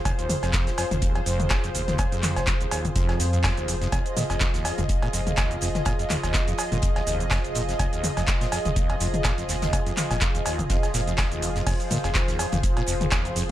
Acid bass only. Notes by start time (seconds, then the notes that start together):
0.05 D#2
0.19 D#2
0.29 F2
0.43 F2
0.67 F1
0.78 F2
0.91 D#2
1.02 D#2
1.15 F2
1.26 F2
1.51 F1
1.64 F2
1.75 D#2
1.88 D#2
1.99 F2
2.12 F2
2.36 F1
2.47 F2
2.61 D#2
2.71 D#2
2.85 F2
2.96 F2
3.20 F1
3.33 F2
3.44 D#2
3.57 D#2
3.68 F2
3.82 F2
3.92 F2
4.17 A#2
4.30 F2
4.41 D#2
4.54 D#2
4.65 F2
4.78 F2
5.03 A#2
5.13 F2
5.27 D#2
5.38 D#2
5.51 F2
5.62 F2
5.86 A#2
5.99 F2
6.10 D#2
6.24 D#2
6.34 F2
6.48 F2
6.72 A#2
6.83 F2
6.96 D#2
7.07 D#2
7.20 F2
7.31 F2
7.55 A#2
7.69 F2
7.79 D#2
7.93 D#2
8.04 F2
8.17 F2
8.41 A#2
8.52 F2
8.65 D#2
8.76 D#2
8.90 F2
9.00 F2
9.25 A#2
9.38 F2
9.49 D#2
9.62 D#2
9.73 F2
9.86 F2
10.11 A#2
10.22 F2
10.35 D#2
10.46 D#2
10.59 F2
10.70 F2
10.94 A#2
11.07 F2
11.18 D#2
11.32 D#2
11.42 F2
11.56 F2
11.67 F2
11.91 A#2
12.04 F2
12.15 D#2
12.28 D#2
12.39 F2
12.52 F2
12.77 A#2
12.88 F2
13.01 D#2
13.12 D#2
13.25 F2
13.36 F2